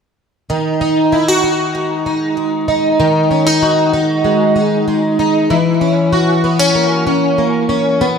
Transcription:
0.50 D#3
0.81 D#4
1.12 E4
1.28 F#4
1.44 D#4
1.75 G#3
2.06 D#4
2.37 G#3
2.68 D#4
3.00 D#3
3.31 C#4
3.47 D#4
3.62 F#4
3.93 D#4
4.24 G#3
4.56 D#4
4.88 G#3
5.19 D#4
5.50 E3
5.81 C#4
6.13 F#4
6.44 B3
6.59 C#4
6.75 A#3
7.07 C#4
7.38 A#3
7.69 C#4
8.01 B3

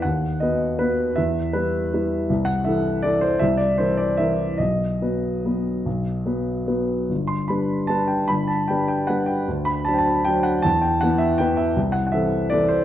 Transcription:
0.02 D#2 F#5
0.40 B3 F#4 B4 D#5
0.79 B3 F#4 B4
1.16 E2 E5
1.53 G3 E4 B4
1.94 G3 E4 B4
2.30 C2
2.45 F#5
2.64 E3 E4 A4 E5
3.03 E3 E4 A4 D5
3.21 C5
3.39 C2 E5
3.57 D5
3.78 E3 E4 A#4 C5
3.97 D5
4.17 E3 E4 A#4 E5
4.58 B1 D#5
5.01 F#3 B3 B4
5.45 F#3 B3 B4
5.86 B1
6.26 F#3 B3 B4
6.67 F#3 B3 B4
7.09 G1
7.27 C6
7.48 G3 D4 B4 B5
7.87 G3 D4 B4 A5
8.07 G5
8.28 G1 B5
8.48 A5
8.68 G3 D4 B4 G5
8.88 G5
9.07 G3 D4 B4 F#5
9.26 G5
9.48 D2
9.65 B5
9.85 F#3 D4 C5 A5
9.94 G5
9.98 A5
10.25 F#3 D4 C5 G5
10.43 F#5
10.62 E2 A5
10.81 G5
11.01 E3 B3 B4 F#5
11.18 E5
11.38 E3 B3 B4 G5
11.57 E5
11.76 C2
11.92 F#5
12.07 F#5
12.12 E3 C4 A4 E5
12.50 E3 C4 A4 D5
12.68 C5

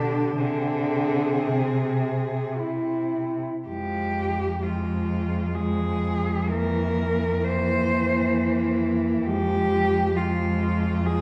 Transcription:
Already playing: B2 D3 D4 G4
0.37 C3 D3 C4 G#4
1.48 C3
2.60 E4
3.67 F2 F3 G#3 G4
4.63 F3 G#3 F4
5.55 F3 G#3 G#4
6.52 E3 A#3 A#4
7.44 E3 A#3 C5
9.26 F2 F3 G#3 G4
10.16 F3 G#3 F4
11.06 F3 G#3 G#4

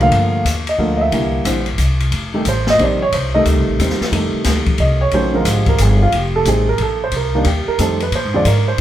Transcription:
Already playing: C2
0.00 D3 F3 A3 A#3 F5, ride
0.11 G2, kick, ride
0.45 D#2, kick, hi-hat pedal, ride
0.67 D#5, ride
0.78 D2 D3 F3 A3 A#3, kick
0.97 D#5
1.01 E5
1.12 C2 D3 E3 G3 A#3, kick, ride
1.45 A#1 D3 E3 G3 C4, kick, hi-hat pedal, ride
1.66 ride
1.78 C2, kick, hi-hat pedal, ride
2.00 ride
2.11 F1, kick, ride
2.33 C3 D#3 G3 A3 G4
2.45 A1 C5, kick, hi-hat pedal, ride
2.67 D#5, snare
2.79 A#1 C3 D#3 G3 C4, kick, ride
2.83 D5
3.02 C#5
3.12 C2 C5, kick, ride
3.35 C3 D#3 G3 A3 D#5
3.45 D2, kick, hi-hat pedal, ride
3.57 C2
3.68 A1
3.79 D#2 C3 D#3 G3 C4, kick, hi-hat pedal, ride
3.90 snare
4.01 muted upright bass stroke, snare
4.11 F2 C3 D#3 G3 A3, kick, ride
4.33 muted upright bass stroke
4.44 D2, kick, snare, hi-hat pedal, ride
4.66 muted upright bass stroke, kick, ride
4.78 C2 D#5, kick, ride
5.01 C#5
5.11 A#1 D#3 F#3 A3 C#4 C5, kick, ride
5.34 D3 F3 G#3 C4 A#4
5.45 G#1 G4, kick, hi-hat pedal, ride
5.66 A#4, kick, ride
5.78 G1 G#4, kick, hi-hat pedal, ride
6.02 F4
6.12 F1 G4, kick, ride
6.36 A4
6.45 A1 D#3 G3 A3 C4 G#4, kick, hi-hat pedal, ride
6.69 A#4
6.78 A#1, kick, ride
6.82 A4
7.04 C5
7.11 C2, kick, ride
7.16 A#4
7.35 D#3 G3 A#3 D4
7.44 D#2 G4, kick, ride
7.68 A#4, muted upright bass stroke
7.78 F2 D#3 G3 A3 C4 A4, kick, hi-hat pedal, ride
8.00 B4, ride
8.11 A#2 C5, kick, ride
8.25 G#2
8.34 F2 D3 F3 G#3 C4 D5
8.45 G#2 A#4, kick, hi-hat pedal, ride
8.68 C5

